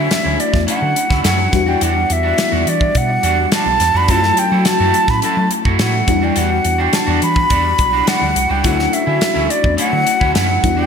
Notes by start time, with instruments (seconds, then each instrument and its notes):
Already playing: fm electric piano A3 C#4 D4 E4 F#4, clean electric guitar E4, flute E5
0.10 muted clean electric guitar stroke, snare, closed hi-hat
0.24 fingered electric bass D2, clean electric guitar F#3 C#4 E4
0.38 flute D5, muted clean electric guitar stroke, closed hi-hat
0.53 fingered electric bass E2, muted clean electric guitar stroke, kick, snare
0.67 clean electric guitar F#3 C#4 E4, flute F#5, closed hi-hat
0.81 fingered electric bass D3, muted clean electric guitar stroke
0.95 muted clean electric guitar stroke, closed hi-hat
1.09 fingered electric bass D2, clean electric guitar F#3 C#4 E4, kick, snare
1.23 fingered electric bass F#2, clean electric guitar F#3 C#4 E4, flute F#5, snare, closed hi-hat
1.38 muted clean electric guitar stroke
1.52 fingered electric bass E2, fm electric piano G3 B3 D4 E4 F#4, muted clean electric guitar stroke, kick, snare, closed hi-hat
1.66 clean electric guitar G3 D4 F#4, flute G5
1.81 fingered electric bass E2, clean electric guitar G3 D4 F#4, flute F#5, closed hi-hat
1.95 muted clean electric guitar stroke
2.09 fingered electric bass E2, flute E5, muted clean electric guitar stroke, closed hi-hat
2.23 clean electric guitar G3 D4 F#4
2.38 snare, closed hi-hat
2.52 fingered electric bass E2, clean electric guitar G3 D4 F#4
2.66 fingered electric bass E3, flute D5, muted clean electric guitar stroke, closed hi-hat
2.80 muted clean electric guitar stroke, kick
2.95 fingered electric bass B2, flute F#5, kick, closed hi-hat
3.09 muted clean electric guitar stroke
3.23 fingered electric bass E2, clean electric guitar G3 D4 F#4, closed hi-hat
3.38 muted clean electric guitar stroke
3.52 clean electric guitar G3 D4 F#4, flute A5, snare, closed hi-hat
3.66 fingered electric bass B1, muted clean electric guitar stroke
3.80 fingered electric bass E2, muted clean electric guitar stroke, snare, closed hi-hat
3.94 fingered electric bass F2, clean electric guitar G3 D4 F#4, flute B5
4.08 fingered electric bass F#2, fm electric piano F#3 A3 C#4 E4 F4, clean electric guitar A3 E4 F#4, flute A5, kick, closed hi-hat
4.17 fm electric piano F#4
4.23 muted clean electric guitar stroke, snare
4.37 flute G5, muted clean electric guitar stroke, closed hi-hat
4.52 fingered electric bass F#3, clean electric guitar A3 E4 F#4
4.65 flute A5, muted clean electric guitar stroke, snare, closed hi-hat
4.80 fingered electric bass F#2, clean electric guitar A3 E4 F#4
4.94 muted clean electric guitar stroke, closed hi-hat
5.08 fingered electric bass A2, flute B5, muted clean electric guitar stroke, kick, snare
5.22 clean electric guitar A3 E4 F#4, flute A5, closed hi-hat
5.37 fingered electric bass F#3, muted clean electric guitar stroke
5.51 muted clean electric guitar stroke, closed hi-hat
5.65 fingered electric bass F#2, clean electric guitar A3 E4 F#4, kick
5.79 fingered electric bass A2, clean electric guitar A3 E4 F#4, flute F#5, snare, closed hi-hat
5.94 muted clean electric guitar stroke
6.06 fingered electric bass E2, fm electric piano G3 B3 D4 E4 F#4, muted clean electric guitar stroke, kick, closed hi-hat
6.22 clean electric guitar G3 D4 F#4, flute G5
6.36 fingered electric bass E2, clean electric guitar G3 D4 F#4, flute F#5, closed hi-hat
6.51 muted clean electric guitar stroke
6.65 fingered electric bass E2, muted clean electric guitar stroke, closed hi-hat
6.78 clean electric guitar G3 D4 F#4, flute G5
6.93 flute A5, muted clean electric guitar stroke, snare, closed hi-hat
7.07 fingered electric bass E2, clean electric guitar G3 D4 F#4
7.22 fingered electric bass E3, flute B5, muted clean electric guitar stroke, closed hi-hat
7.36 muted clean electric guitar stroke, kick
7.50 fingered electric bass E2, clean electric guitar G3 D4 F#4, kick, closed hi-hat
7.65 muted clean electric guitar stroke
7.78 fingered electric bass B1, muted clean electric guitar stroke, kick, closed hi-hat
7.93 clean electric guitar G3 D4 F#4
8.07 clean electric guitar G3 D4 F#4, flute F#5, snare, closed hi-hat
8.22 fingered electric bass D2, muted clean electric guitar stroke
8.36 fingered electric bass C2, muted clean electric guitar stroke, closed hi-hat
8.49 fingered electric bass C#2, clean electric guitar G3 D4 F#4, flute G5
8.63 fingered electric bass D2, clean electric guitar F#3 C#4 E4, fm electric piano A3 C#4 D4 E4 F#4, flute F#5, kick, closed hi-hat
8.78 muted clean electric guitar stroke, snare
8.92 flute E5, muted clean electric guitar stroke, closed hi-hat
9.06 fingered electric bass D3, clean electric guitar F#3 C#4 E4
9.21 muted clean electric guitar stroke, snare, closed hi-hat
9.35 fingered electric bass D2, clean electric guitar F#3 C#4 E4
9.49 flute D5, muted clean electric guitar stroke, closed hi-hat
9.63 fingered electric bass E2, muted clean electric guitar stroke, kick
9.77 clean electric guitar F#3 C#4 E4, flute F#5, closed hi-hat
9.92 fingered electric bass D3, muted clean electric guitar stroke
10.06 muted clean electric guitar stroke, closed hi-hat
10.20 fingered electric bass D2, clean electric guitar F#3 C#4 E4, kick
10.34 fingered electric bass F#2, clean electric guitar F#3 C#4 E4, flute F#5, snare, closed hi-hat
10.49 muted clean electric guitar stroke
10.63 fingered electric bass E2, fm electric piano G3 B3 D4 E4 F#4, muted clean electric guitar stroke, kick, closed hi-hat
10.77 clean electric guitar G3 D4 F#4, flute G5